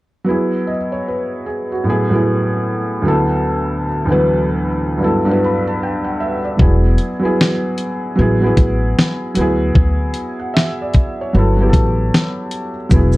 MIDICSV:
0, 0, Header, 1, 4, 480
1, 0, Start_track
1, 0, Key_signature, 4, "major"
1, 0, Tempo, 789474
1, 170, Time_signature, 4, 2, 24, 8
1, 8008, End_track
2, 0, Start_track
2, 0, Title_t, "Felt piano"
2, 0, Program_c, 0, 0
2, 151, Note_on_c, 0, 54, 73
2, 161, Note_on_c, 0, 59, 68
2, 176, Note_on_c, 0, 64, 74
2, 184, Note_on_c, 0, 68, 69
2, 298, Control_c, 0, 64, 127
2, 410, Note_on_c, 0, 75, 57
2, 417, Note_off_c, 0, 68, 0
2, 464, Note_off_c, 0, 54, 0
2, 470, Note_off_c, 0, 59, 0
2, 477, Note_off_c, 0, 64, 0
2, 547, Note_off_c, 0, 75, 0
2, 561, Note_on_c, 0, 73, 60
2, 648, Note_off_c, 0, 73, 0
2, 659, Note_on_c, 0, 71, 61
2, 883, Note_off_c, 0, 71, 0
2, 890, Note_on_c, 0, 68, 62
2, 1027, Note_off_c, 0, 68, 0
2, 1046, Note_on_c, 0, 66, 57
2, 1118, Note_on_c, 0, 45, 73
2, 1125, Note_on_c, 0, 54, 61
2, 1138, Control_c, 0, 64, 0
2, 1138, Note_on_c, 0, 59, 68
2, 1147, Note_on_c, 0, 64, 73
2, 1153, Note_on_c, 0, 68, 92
2, 1228, Control_c, 0, 64, 127
2, 1241, Note_off_c, 0, 45, 0
2, 1245, Note_off_c, 0, 54, 0
2, 1251, Note_off_c, 0, 59, 0
2, 1256, Note_off_c, 0, 64, 0
2, 1259, Note_off_c, 0, 68, 0
2, 1268, Note_off_c, 0, 66, 0
2, 1272, Note_on_c, 0, 45, 74
2, 1281, Note_on_c, 0, 54, 68
2, 1290, Note_on_c, 0, 59, 69
2, 1300, Note_on_c, 0, 64, 64
2, 1309, Note_on_c, 0, 68, 77
2, 1836, Note_on_c, 0, 38, 73
2, 1837, Note_off_c, 0, 54, 0
2, 1846, Note_off_c, 0, 59, 0
2, 1846, Note_on_c, 0, 54, 67
2, 1849, Note_off_c, 0, 45, 0
2, 1853, Note_off_c, 0, 64, 0
2, 1856, Note_on_c, 0, 59, 72
2, 1857, Control_c, 0, 64, 0
2, 1863, Note_on_c, 0, 64, 70
2, 1867, Note_off_c, 0, 68, 0
2, 1872, Note_on_c, 0, 69, 92
2, 1977, Control_c, 0, 64, 127
2, 2334, Note_off_c, 0, 38, 0
2, 2339, Note_off_c, 0, 54, 0
2, 2344, Note_off_c, 0, 59, 0
2, 2347, Note_off_c, 0, 64, 0
2, 2352, Note_off_c, 0, 69, 0
2, 2463, Note_on_c, 0, 38, 80
2, 2472, Note_on_c, 0, 52, 59
2, 2483, Note_on_c, 0, 59, 74
2, 2492, Note_on_c, 0, 64, 74
2, 2501, Note_on_c, 0, 71, 90
2, 2505, Note_off_c, 0, 52, 0
2, 2514, Note_on_c, 0, 54, 73
2, 3025, Note_on_c, 0, 43, 66
2, 3027, Note_off_c, 0, 54, 0
2, 3034, Note_off_c, 0, 38, 0
2, 3036, Note_on_c, 0, 54, 66
2, 3038, Note_off_c, 0, 59, 0
2, 3044, Note_off_c, 0, 64, 0
2, 3047, Note_on_c, 0, 59, 67
2, 3053, Note_off_c, 0, 71, 0
2, 3054, Note_on_c, 0, 64, 67
2, 3057, Control_c, 0, 64, 0
2, 3063, Note_on_c, 0, 69, 87
2, 3155, Note_off_c, 0, 43, 0
2, 3160, Note_off_c, 0, 54, 0
2, 3166, Note_off_c, 0, 59, 0
2, 3169, Note_off_c, 0, 64, 0
2, 3174, Note_off_c, 0, 69, 0
2, 3174, Control_c, 0, 64, 127
2, 3190, Note_on_c, 0, 43, 78
2, 3201, Note_on_c, 0, 54, 68
2, 3210, Note_on_c, 0, 59, 73
2, 3217, Note_on_c, 0, 64, 67
2, 3228, Note_on_c, 0, 71, 90
2, 3307, Note_on_c, 0, 83, 63
2, 3436, Note_off_c, 0, 83, 0
2, 3448, Note_on_c, 0, 81, 70
2, 3532, Note_off_c, 0, 81, 0
2, 3544, Note_on_c, 0, 79, 59
2, 3674, Note_off_c, 0, 79, 0
2, 3674, Note_on_c, 0, 78, 58
2, 3765, Note_off_c, 0, 78, 0
2, 3771, Note_on_c, 0, 76, 63
2, 3870, Note_off_c, 0, 43, 0
2, 3875, Note_off_c, 0, 54, 0
2, 3879, Note_off_c, 0, 59, 0
2, 3883, Note_off_c, 0, 64, 0
2, 3888, Note_off_c, 0, 71, 0
2, 3907, Note_off_c, 0, 76, 0
2, 3919, Note_on_c, 0, 74, 60
2, 3994, Note_on_c, 0, 54, 71
2, 4005, Note_on_c, 0, 59, 71
2, 4017, Note_on_c, 0, 64, 65
2, 4019, Control_c, 0, 64, 0
2, 4027, Note_on_c, 0, 68, 78
2, 4140, Control_c, 0, 64, 127
2, 4145, Note_off_c, 0, 74, 0
2, 4306, Note_off_c, 0, 54, 0
2, 4312, Note_off_c, 0, 59, 0
2, 4318, Note_off_c, 0, 64, 0
2, 4322, Note_off_c, 0, 68, 0
2, 4374, Note_on_c, 0, 54, 79
2, 4386, Note_on_c, 0, 59, 71
2, 4395, Note_on_c, 0, 64, 75
2, 4408, Note_on_c, 0, 68, 86
2, 4949, Note_off_c, 0, 54, 0
2, 4955, Note_off_c, 0, 59, 0
2, 4960, Note_off_c, 0, 64, 0
2, 4960, Note_on_c, 0, 54, 83
2, 4966, Note_off_c, 0, 68, 0
2, 4970, Note_on_c, 0, 59, 71
2, 4978, Control_c, 0, 64, 0
2, 4986, Note_on_c, 0, 64, 66
2, 4995, Note_on_c, 0, 68, 84
2, 5082, Note_off_c, 0, 54, 0
2, 5087, Note_off_c, 0, 59, 0
2, 5087, Control_c, 0, 64, 127
2, 5095, Note_off_c, 0, 64, 0
2, 5100, Note_off_c, 0, 68, 0
2, 5111, Note_on_c, 0, 54, 73
2, 5121, Note_on_c, 0, 59, 75
2, 5133, Note_on_c, 0, 64, 77
2, 5147, Note_on_c, 0, 68, 89
2, 5673, Note_off_c, 0, 54, 0
2, 5682, Note_on_c, 0, 54, 84
2, 5687, Note_off_c, 0, 59, 0
2, 5696, Control_c, 0, 64, 0
2, 5696, Note_on_c, 0, 59, 76
2, 5699, Note_off_c, 0, 64, 0
2, 5706, Note_off_c, 0, 68, 0
2, 5710, Note_on_c, 0, 64, 84
2, 5722, Note_on_c, 0, 68, 96
2, 5791, Control_c, 0, 64, 127
2, 6177, Note_off_c, 0, 54, 0
2, 6184, Note_off_c, 0, 59, 0
2, 6191, Note_off_c, 0, 64, 0
2, 6197, Note_off_c, 0, 68, 0
2, 6321, Note_on_c, 0, 78, 62
2, 6408, Note_on_c, 0, 76, 71
2, 6409, Note_off_c, 0, 78, 0
2, 6545, Note_off_c, 0, 76, 0
2, 6576, Note_on_c, 0, 74, 65
2, 6793, Note_off_c, 0, 74, 0
2, 6816, Note_on_c, 0, 73, 62
2, 6888, Note_on_c, 0, 54, 73
2, 6898, Control_c, 0, 64, 0
2, 6900, Note_on_c, 0, 59, 69
2, 6911, Note_on_c, 0, 64, 64
2, 6922, Note_on_c, 0, 69, 86
2, 7007, Note_off_c, 0, 54, 0
2, 7008, Control_c, 0, 64, 127
2, 7013, Note_off_c, 0, 59, 0
2, 7018, Note_off_c, 0, 64, 0
2, 7023, Note_off_c, 0, 69, 0
2, 7033, Note_off_c, 0, 73, 0
2, 7033, Note_on_c, 0, 54, 74
2, 7047, Note_on_c, 0, 59, 65
2, 7060, Note_on_c, 0, 64, 69
2, 7069, Note_on_c, 0, 67, 69
2, 7083, Note_off_c, 0, 67, 0
2, 7109, Note_on_c, 0, 69, 78
2, 7711, Note_off_c, 0, 54, 0
2, 7718, Note_off_c, 0, 59, 0
2, 7724, Note_off_c, 0, 64, 0
2, 7749, Note_off_c, 0, 69, 0
2, 7838, Note_on_c, 0, 54, 74
2, 7851, Note_on_c, 0, 59, 69
2, 7858, Control_c, 0, 64, 0
2, 7865, Note_on_c, 0, 64, 76
2, 7876, Note_on_c, 0, 68, 78
2, 7971, Control_c, 0, 64, 127
2, 8008, Note_off_c, 0, 54, 0
2, 8008, Note_off_c, 0, 59, 0
2, 8008, Note_off_c, 0, 64, 0
2, 8008, Note_off_c, 0, 68, 0
2, 8008, End_track
3, 0, Start_track
3, 0, Title_t, "Upright bass"
3, 0, Program_c, 1, 32
3, 4014, Note_on_c, 1, 28, 89
3, 4228, Note_off_c, 1, 28, 0
3, 4978, Note_on_c, 1, 33, 98
3, 5190, Note_off_c, 1, 33, 0
3, 5214, Note_on_c, 1, 33, 89
3, 5428, Note_off_c, 1, 33, 0
3, 5697, Note_on_c, 1, 38, 92
3, 5910, Note_off_c, 1, 38, 0
3, 5934, Note_on_c, 1, 38, 84
3, 6148, Note_off_c, 1, 38, 0
3, 6898, Note_on_c, 1, 31, 104
3, 7110, Note_off_c, 1, 31, 0
3, 7137, Note_on_c, 1, 33, 83
3, 7350, Note_off_c, 1, 33, 0
3, 7854, Note_on_c, 1, 28, 96
3, 8008, Note_off_c, 1, 28, 0
3, 8008, End_track
4, 0, Start_track
4, 0, Title_t, "Drums"
4, 4008, Note_on_c, 9, 36, 99
4, 4069, Note_off_c, 9, 36, 0
4, 4244, Note_on_c, 9, 42, 52
4, 4305, Note_off_c, 9, 42, 0
4, 4505, Note_on_c, 9, 38, 110
4, 4566, Note_off_c, 9, 38, 0
4, 4729, Note_on_c, 9, 42, 58
4, 4790, Note_off_c, 9, 42, 0
4, 5212, Note_on_c, 9, 36, 88
4, 5212, Note_on_c, 9, 42, 52
4, 5272, Note_off_c, 9, 42, 0
4, 5273, Note_off_c, 9, 36, 0
4, 5464, Note_on_c, 9, 38, 107
4, 5525, Note_off_c, 9, 38, 0
4, 5687, Note_on_c, 9, 42, 71
4, 5748, Note_off_c, 9, 42, 0
4, 5930, Note_on_c, 9, 36, 106
4, 5990, Note_off_c, 9, 36, 0
4, 6164, Note_on_c, 9, 42, 54
4, 6224, Note_off_c, 9, 42, 0
4, 6424, Note_on_c, 9, 38, 108
4, 6485, Note_off_c, 9, 38, 0
4, 6649, Note_on_c, 9, 42, 54
4, 6655, Note_on_c, 9, 36, 82
4, 6710, Note_off_c, 9, 42, 0
4, 6715, Note_off_c, 9, 36, 0
4, 7133, Note_on_c, 9, 36, 96
4, 7136, Note_on_c, 9, 42, 58
4, 7194, Note_off_c, 9, 36, 0
4, 7197, Note_off_c, 9, 42, 0
4, 7383, Note_on_c, 9, 38, 108
4, 7444, Note_off_c, 9, 38, 0
4, 7608, Note_on_c, 9, 42, 76
4, 7668, Note_off_c, 9, 42, 0
4, 7848, Note_on_c, 9, 82, 56
4, 7849, Note_on_c, 9, 36, 106
4, 7909, Note_off_c, 9, 82, 0
4, 7910, Note_off_c, 9, 36, 0
4, 7980, Note_on_c, 9, 82, 47
4, 8008, Note_off_c, 9, 82, 0
4, 8008, End_track
0, 0, End_of_file